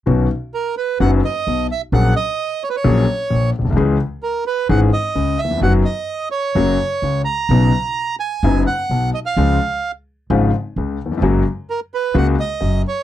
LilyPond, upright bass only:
\new Staff \with { instrumentName = "Upright bass" } { \clef bass \time 4/4 \key b \major \tempo 4 = 129 b,,16. r4. r32 fis,,16. r8 r32 b,,16. r8 r32 | ais,,16. r4. r32 ais,,16. r8 r32 ais,,16. r16 ais,,32 b,,32 c,32 | cis,16. r4. r32 gis,,16. r8 r32 cis,16. r8 r32 | fis,,16. r4. r32 fis,,16. r8 r32 cis,16. r8 r32 |
b,,16. r4. r32 fis,,16. r8 r32 b,,16. r8 r32 | cis,16. r4. r32 gis,,16. r8 r32 cis,16. r8 r32 | fis,,16. r4. r32 cis,16. r8 r32 fis,,16. r8 r32 | }